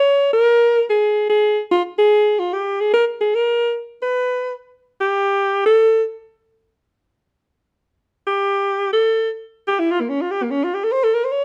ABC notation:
X:1
M:4/4
L:1/16
Q:"Swing" 1/4=147
K:Bbdor
V:1 name="Alto saxophone"
d2 B6 A4 A3 z | F2 A4 F2 G2 A2 B2 A2 | B4 z2 _c6 z4 | [K:Gmix] G6 A4 z6 |
z16 | G6 A4 z4 G E | F _B, _D F G B, D F G A c A _B c _d z |]